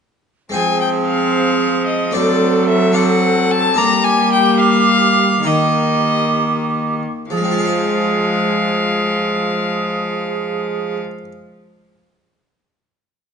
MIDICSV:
0, 0, Header, 1, 6, 480
1, 0, Start_track
1, 0, Tempo, 541028
1, 472, Time_signature, 6, 3, 24, 8
1, 3832, Tempo, 576923
1, 5272, Tempo, 625000
1, 6232, Tempo, 640342
1, 10757, End_track
2, 0, Start_track
2, 0, Title_t, "Violin"
2, 0, Program_c, 0, 40
2, 470, Note_on_c, 0, 80, 73
2, 695, Note_off_c, 0, 80, 0
2, 717, Note_on_c, 0, 79, 69
2, 788, Note_off_c, 0, 79, 0
2, 947, Note_on_c, 0, 77, 76
2, 1649, Note_off_c, 0, 77, 0
2, 1655, Note_on_c, 0, 75, 65
2, 1891, Note_on_c, 0, 74, 73
2, 1904, Note_off_c, 0, 75, 0
2, 2373, Note_off_c, 0, 74, 0
2, 2378, Note_on_c, 0, 76, 78
2, 2625, Note_on_c, 0, 78, 80
2, 2638, Note_off_c, 0, 76, 0
2, 3112, Note_on_c, 0, 81, 89
2, 3126, Note_off_c, 0, 78, 0
2, 3349, Note_on_c, 0, 82, 90
2, 3362, Note_off_c, 0, 81, 0
2, 3582, Note_on_c, 0, 80, 93
2, 3595, Note_off_c, 0, 82, 0
2, 3828, Note_off_c, 0, 80, 0
2, 3834, Note_on_c, 0, 79, 87
2, 4059, Note_off_c, 0, 79, 0
2, 4062, Note_on_c, 0, 77, 94
2, 4779, Note_on_c, 0, 75, 72
2, 4791, Note_off_c, 0, 77, 0
2, 5987, Note_off_c, 0, 75, 0
2, 6238, Note_on_c, 0, 77, 68
2, 8986, Note_off_c, 0, 77, 0
2, 10757, End_track
3, 0, Start_track
3, 0, Title_t, "Recorder"
3, 0, Program_c, 1, 74
3, 481, Note_on_c, 1, 68, 55
3, 1878, Note_off_c, 1, 68, 0
3, 1911, Note_on_c, 1, 69, 53
3, 2613, Note_off_c, 1, 69, 0
3, 2631, Note_on_c, 1, 69, 59
3, 3342, Note_on_c, 1, 67, 67
3, 3356, Note_off_c, 1, 69, 0
3, 4771, Note_off_c, 1, 67, 0
3, 4776, Note_on_c, 1, 67, 55
3, 5962, Note_off_c, 1, 67, 0
3, 6231, Note_on_c, 1, 68, 52
3, 8979, Note_off_c, 1, 68, 0
3, 10757, End_track
4, 0, Start_track
4, 0, Title_t, "Harpsichord"
4, 0, Program_c, 2, 6
4, 439, Note_on_c, 2, 56, 41
4, 455, Note_on_c, 2, 60, 42
4, 464, Note_on_c, 2, 72, 40
4, 478, Note_on_c, 2, 53, 45
4, 1857, Note_off_c, 2, 56, 0
4, 1865, Note_off_c, 2, 60, 0
4, 1870, Note_off_c, 2, 72, 0
4, 1874, Note_on_c, 2, 57, 44
4, 1877, Note_off_c, 2, 53, 0
4, 1883, Note_on_c, 2, 62, 43
4, 1893, Note_on_c, 2, 72, 44
4, 1909, Note_on_c, 2, 54, 50
4, 2582, Note_off_c, 2, 57, 0
4, 2591, Note_off_c, 2, 62, 0
4, 2592, Note_on_c, 2, 57, 44
4, 2596, Note_off_c, 2, 72, 0
4, 2602, Note_on_c, 2, 62, 45
4, 2614, Note_on_c, 2, 72, 45
4, 3306, Note_off_c, 2, 57, 0
4, 3309, Note_off_c, 2, 54, 0
4, 3311, Note_off_c, 2, 62, 0
4, 3317, Note_off_c, 2, 72, 0
4, 3320, Note_on_c, 2, 62, 47
4, 3333, Note_on_c, 2, 70, 47
4, 3343, Note_on_c, 2, 55, 52
4, 4732, Note_off_c, 2, 62, 0
4, 4738, Note_off_c, 2, 70, 0
4, 4743, Note_off_c, 2, 55, 0
4, 4756, Note_on_c, 2, 63, 42
4, 4763, Note_on_c, 2, 70, 39
4, 4775, Note_on_c, 2, 51, 46
4, 6018, Note_off_c, 2, 51, 0
4, 6191, Note_off_c, 2, 63, 0
4, 6194, Note_off_c, 2, 70, 0
4, 6234, Note_on_c, 2, 53, 45
4, 6284, Note_on_c, 2, 56, 48
4, 6337, Note_on_c, 2, 60, 45
4, 6391, Note_on_c, 2, 65, 47
4, 6442, Note_on_c, 2, 68, 43
4, 6496, Note_on_c, 2, 72, 47
4, 8983, Note_off_c, 2, 53, 0
4, 9033, Note_off_c, 2, 56, 0
4, 9085, Note_off_c, 2, 60, 0
4, 9139, Note_off_c, 2, 65, 0
4, 9191, Note_off_c, 2, 68, 0
4, 9245, Note_off_c, 2, 72, 0
4, 10757, End_track
5, 0, Start_track
5, 0, Title_t, "Viola"
5, 0, Program_c, 3, 41
5, 477, Note_on_c, 3, 60, 62
5, 1877, Note_off_c, 3, 60, 0
5, 1915, Note_on_c, 3, 60, 58
5, 2614, Note_off_c, 3, 60, 0
5, 2634, Note_on_c, 3, 60, 61
5, 3344, Note_on_c, 3, 58, 69
5, 3358, Note_off_c, 3, 60, 0
5, 4773, Note_off_c, 3, 58, 0
5, 4778, Note_on_c, 3, 58, 57
5, 6025, Note_off_c, 3, 58, 0
5, 6235, Note_on_c, 3, 56, 57
5, 8984, Note_off_c, 3, 56, 0
5, 10757, End_track
6, 0, Start_track
6, 0, Title_t, "Cello"
6, 0, Program_c, 4, 42
6, 474, Note_on_c, 4, 53, 54
6, 1911, Note_on_c, 4, 54, 61
6, 1925, Note_off_c, 4, 53, 0
6, 3335, Note_off_c, 4, 54, 0
6, 3341, Note_on_c, 4, 55, 66
6, 4747, Note_off_c, 4, 55, 0
6, 4772, Note_on_c, 4, 51, 57
6, 6023, Note_off_c, 4, 51, 0
6, 6231, Note_on_c, 4, 53, 59
6, 8980, Note_off_c, 4, 53, 0
6, 10757, End_track
0, 0, End_of_file